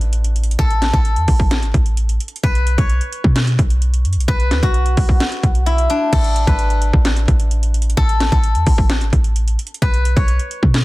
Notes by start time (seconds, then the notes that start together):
Already playing: A1 D4 E4 A4 B4
0.01 closed hi-hat
0.13 closed hi-hat
0.24 closed hi-hat
0.36 closed hi-hat
0.43 closed hi-hat
0.51 closed hi-hat
0.59 A1 A4, kick, closed hi-hat
0.70 closed hi-hat
0.82 snare, clap, closed hi-hat
0.93 A1 A4, kick, closed hi-hat
1.05 closed hi-hat
1.16 E2, closed hi-hat
1.28 A1, kick, open hi-hat
1.40 kick
1.51 snare, clap, closed hi-hat
1.63 G#1, closed hi-hat
1.74 A1, kick, closed hi-hat
1.86 closed hi-hat
1.97 closed hi-hat
2.09 closed hi-hat
2.20 closed hi-hat
2.28 closed hi-hat
2.36 closed hi-hat
2.43 B1 B4, kick, closed hi-hat
2.55 closed hi-hat
2.67 closed hi-hat
2.78 B1 C#5, kick, closed hi-hat
2.90 closed hi-hat
3.01 closed hi-hat
3.13 closed hi-hat
3.24 B2, kick
3.36 snare, clap, closed hi-hat
3.47 closed hi-hat
3.59 B1, kick, closed hi-hat
3.70 closed hi-hat
3.82 closed hi-hat
3.94 closed hi-hat
4.05 F#2, closed hi-hat
4.13 B1, closed hi-hat
4.20 closed hi-hat
4.28 B1 B4, kick, closed hi-hat
4.40 closed hi-hat
4.51 D2, snare, clap, closed hi-hat
4.63 B1 F#4, kick, closed hi-hat
4.74 closed hi-hat
4.86 closed hi-hat
4.97 B1, kick, open hi-hat
5.09 kick
5.20 snare, clap, closed hi-hat
5.32 closed hi-hat
5.43 B1, kick, closed hi-hat
5.55 closed hi-hat
5.66 E4, closed hi-hat
5.78 closed hi-hat
5.90 D4, closed hi-hat
6.13 A1 A4, kick, closed hi-hat, crash
6.24 closed hi-hat
6.36 closed hi-hat
6.47 G#1 B4, kick, closed hi-hat
6.59 closed hi-hat
6.70 closed hi-hat
6.82 closed hi-hat
6.93 A1, kick
7.05 snare, clap, closed hi-hat
7.17 closed hi-hat
7.28 A1, kick, closed hi-hat
7.40 closed hi-hat
7.51 closed hi-hat
7.63 closed hi-hat
7.74 closed hi-hat
7.82 closed hi-hat
7.90 closed hi-hat
7.97 A1 A4, kick, closed hi-hat
8.09 closed hi-hat
8.20 snare, clap, closed hi-hat
8.32 A1 A4, kick, closed hi-hat
8.44 closed hi-hat
8.55 E2, closed hi-hat
8.66 A1, kick, open hi-hat
8.78 kick
8.90 snare, clap, closed hi-hat
9.01 G#1, closed hi-hat
9.13 A1, kick, closed hi-hat
9.24 closed hi-hat
9.36 closed hi-hat
9.48 closed hi-hat
9.59 closed hi-hat
9.67 closed hi-hat
9.74 closed hi-hat
9.82 B1 B4, kick, closed hi-hat
9.94 closed hi-hat
10.05 closed hi-hat
10.16 B1 C#5, kick, closed hi-hat
10.28 closed hi-hat
10.39 closed hi-hat
10.51 closed hi-hat
10.63 B2, kick
10.74 snare, clap, closed hi-hat